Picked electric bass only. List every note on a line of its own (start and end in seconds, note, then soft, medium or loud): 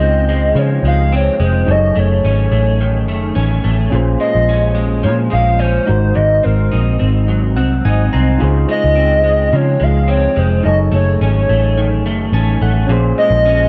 0.00 0.52 C#2 medium
0.55 0.78 C#3 medium
0.83 1.28 C#2 medium
1.40 1.63 F1 medium
1.68 1.91 F#1 medium
1.97 2.19 F#1 medium
2.25 2.47 G#1 medium
2.52 3.08 A1 medium
3.08 3.31 F#1 medium
3.36 3.59 A1 medium
3.65 3.87 A1 medium
3.93 4.15 A#1 medium
4.35 5.06 A#1 medium
5.05 5.27 A#2 medium
5.33 5.78 A#1 medium
5.89 6.12 G#1 medium
6.17 6.39 G#1 medium
6.46 6.68 G#1 medium
6.73 6.96 A#1 medium
7.02 7.58 G#1 medium
7.58 7.80 C2 medium
7.85 8.08 G#1 medium
8.15 8.37 C2 medium
8.42 8.64 C#2 medium
8.84 9.51 C#2 medium
9.53 9.76 C#3 medium
9.81 10.26 C#2 medium
10.37 10.60 F1 medium
10.66 10.88 F#1 medium
10.92 11.15 F#1 medium
11.21 11.44 G#1 medium
11.49 12.05 A1 medium
12.05 12.28 F#1 medium
12.32 12.56 A1 medium
12.61 12.84 A1 medium
12.89 13.12 A#1 medium
13.31 13.69 A#1 loud